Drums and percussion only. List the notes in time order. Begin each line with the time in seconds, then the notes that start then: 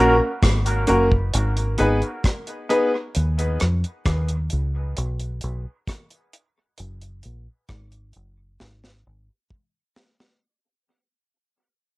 0.43 kick, cross-stick, closed hi-hat
0.66 closed hi-hat
0.87 closed hi-hat
1.11 kick
1.33 closed hi-hat
1.57 closed hi-hat
1.78 closed hi-hat
2.02 closed hi-hat
2.24 kick, cross-stick, closed hi-hat
2.47 closed hi-hat
2.70 closed hi-hat
3.15 closed hi-hat
3.39 closed hi-hat
3.60 cross-stick, closed hi-hat
3.84 closed hi-hat
4.06 kick, cross-stick, closed hi-hat
4.29 closed hi-hat
4.50 closed hi-hat
4.97 closed hi-hat
5.20 closed hi-hat
5.41 closed hi-hat
5.87 kick, cross-stick, closed hi-hat
6.10 closed hi-hat
6.33 closed hi-hat
6.78 closed hi-hat
7.01 closed hi-hat
7.23 closed hi-hat
7.69 kick, cross-stick, closed hi-hat
7.92 closed hi-hat
8.13 closed hi-hat
8.60 snare
8.84 snare
9.51 kick
9.96 snare
10.20 snare